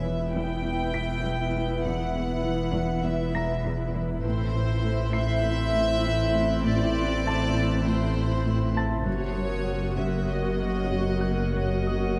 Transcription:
0.00 4.21 E1 soft
0.00 4.27 E1 medium
0.00 4.20 E2 soft
0.00 4.21 B3 soft
0.00 4.21 E4 soft
0.00 4.24 B4 soft
0.00 0.29 E5 medium
0.00 4.20 E5 soft
0.04 0.22 E3 soft
0.33 0.52 E2 soft
0.33 1.85 G5 medium
0.64 0.82 E2 soft
0.94 1.13 E2 soft
0.94 2.72 B6 soft
1.24 1.43 E2 soft
1.55 1.73 E2 soft
1.84 2.03 E2 medium
1.84 3.03 F#5 medium
2.15 2.33 E2 soft
2.45 2.64 E3 soft
2.75 2.93 E2 medium
3.04 3.23 E2 soft
3.04 3.94 E5 medium
3.35 3.53 E2 soft
3.35 5.11 A#5 soft
3.35 5.11 A#6 soft
3.64 3.82 E2 soft
3.94 4.12 E2 soft
4.23 9.03 A1 medium
4.23 9.08 A1 medium
4.23 9.02 A2 soft
4.23 4.42 A2 medium
4.23 9.03 C4 soft
4.23 9.03 E4 soft
4.23 5.11 C5 medium
4.23 9.07 C5 soft
4.23 9.02 E5 medium
4.23 9.07 C6 soft
4.23 8.73 E6 soft
4.23 7.52 G6 soft
4.54 4.73 A2 soft
4.84 5.03 A3 soft
4.84 8.73 F#6 soft
5.13 5.33 A2 medium
5.13 6.65 E5 medium
5.13 6.91 C7 soft
5.45 5.63 A2 soft
5.75 5.93 A2 soft
6.05 6.23 A2 medium
6.35 6.53 A2 soft
6.65 6.83 A2 medium
6.65 7.84 D5 medium
6.95 7.13 A2 soft
7.25 7.44 A3 soft
7.25 8.75 A5 soft
7.25 8.76 A6 soft
7.56 7.74 A2 medium
7.86 8.04 A2 soft
7.86 8.77 C5 medium
8.16 8.34 A2 soft
8.46 8.64 A2 medium
8.76 8.94 A2 soft
8.76 10.57 A5 soft
8.76 10.57 A6 soft
9.06 12.19 F#1 medium
9.06 9.25 F#2 medium
9.06 12.19 F#2 soft
9.06 12.19 A#3 soft
9.06 12.19 F#4 soft
9.06 12.19 A#4 soft
9.06 9.95 C#5 medium
9.06 12.19 C#5 soft
9.06 12.19 F#5 soft
9.06 12.19 C#6 soft
9.06 12.19 D#6 soft
9.37 9.55 F#2 soft
9.67 9.85 F#3 soft
9.98 10.17 F#2 medium
9.98 10.30 E5 medium
10.29 10.48 F#2 soft
10.29 11.54 D#5 medium
10.29 12.19 F#6 soft
10.60 10.79 F#2 soft
10.91 11.10 F#2 soft
11.21 11.42 F#2 soft
11.21 12.19 F#6 soft
11.55 11.74 F#2 soft
11.55 12.18 D#5 soft
11.55 reverse cymbal soft
11.87 12.06 F#2 soft
11.87 12.19 D#6 soft

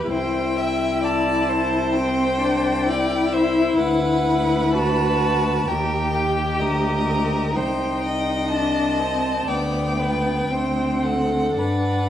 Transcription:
0.00 0.10 B4 medium
0.10 3.75 C2 soft
0.10 1.96 E4 soft
0.10 0.58 C5 medium
0.10 1.05 G5 medium
0.56 1.02 E5 soft
1.03 1.50 D5 soft
1.03 1.94 A5 medium
1.48 2.90 C5 medium
1.94 2.39 C4 soft
1.94 3.34 G5 medium
2.40 2.88 D4 soft
2.86 4.75 E4 soft
2.86 3.35 D5 medium
3.32 3.79 C5 medium
3.32 3.78 E5 medium
3.78 5.63 D2 soft
3.78 5.70 B4 medium
3.78 4.71 F#5 medium
4.74 5.69 F#4 soft
4.74 5.69 A5 medium
5.67 6.61 D#2 soft
5.67 7.55 G4 soft
5.67 6.16 A#4 soft
5.67 6.61 G5 medium
6.14 6.62 G4 soft
6.60 7.57 D2 soft
6.60 7.57 A#4 medium
6.60 7.55 D#5 medium
7.56 9.49 C2 soft
7.56 8.53 D#4 soft
7.56 8.04 C5 soft
7.56 8.50 G5 medium
8.06 9.47 D#5 medium
8.51 9.01 D4 soft
8.51 9.49 A5 medium
8.99 9.50 C4 soft
9.47 10.48 D2 soft
9.47 9.97 B3 soft
9.47 10.01 D5 soft
9.47 11.05 G5 medium
9.98 10.52 B3 soft
9.98 10.53 B4 soft
10.50 11.57 D2 soft
10.50 11.58 C4 soft
10.50 11.05 C5 soft
11.03 11.60 A4 soft
11.03 11.57 F#5 soft
11.58 12.09 G2 soft
11.58 12.09 D4 soft
11.58 12.09 B4 soft
11.58 12.09 F#5 medium

